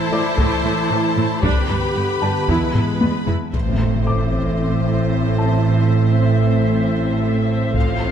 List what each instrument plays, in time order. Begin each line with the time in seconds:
Already playing: analog synth pad E3 A3 A4 C5, viola section E4, violin section C5 A5, felt piano C5 C6
0.11 cello section A2, viola section A3, felt piano D5 D6
0.38 cello section A2, viola section A3, taiko
0.64 cello section A2, viola section A3
0.90 cello section A2, viola section E3
1.16 cello section A2, viola section A3
1.43 cello section G2, analog synth pad D3 B3 G4 B4, viola section D4 G4, violin section B4 B5, taiko
1.70 cello section G2, viola section D4
1.96 cello section G2, viola section B3
2.22 cello section G2, viola section D4, felt piano A5
2.48 cello section E2, analog synth pad E3 G#3, viola section G#3 E4, taiko
2.75 cello section E2, viola section E4, taiko low-mid
3.01 cello section E2, viola section B3, taiko high
3.27 cello section E2, viola section E4, taiko low
3.53 double bass section A1, cello section A2, analog synth pad E3 A3 A4 C5, viola section C4, french horn section C4 E4, violin section C5 E5, taiko, impact
4.07 felt piano D6
4.33 taiko
5.38 felt piano A5
7.74 double bass section A1, cello section A2, analog synth pad F3, viola section C4, french horn section C4 F4, violin section C5 F5, taiko